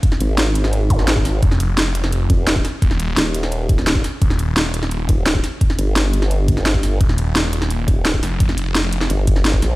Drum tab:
HH |x-x-x-x-x-x-x-o-|x-x-x-x-x-x-x-o-|x-x-x-x-x-x-x-o-|x-x-x-x-x-x-x-o-|
SD |-o--o--o---oo-o-|-o--o--o----o-o-|-o--o--o---oo-o-|-o--o--o----o-o-|
BD |o---------o--o--|o---------o--o--|o---------o--o--|o---------o--o--|

HH |x-x-x-x-x-x-x-o-|x-x-x-x-x-x-x-o-|x-x-x-x-x-x-x-o-|
SD |-o--o--o---oo-o-|-o--o--o----o-o-|-o--o--o---oo-o-|
BD |o---------o--o--|o---------o--o--|o---------o--o--|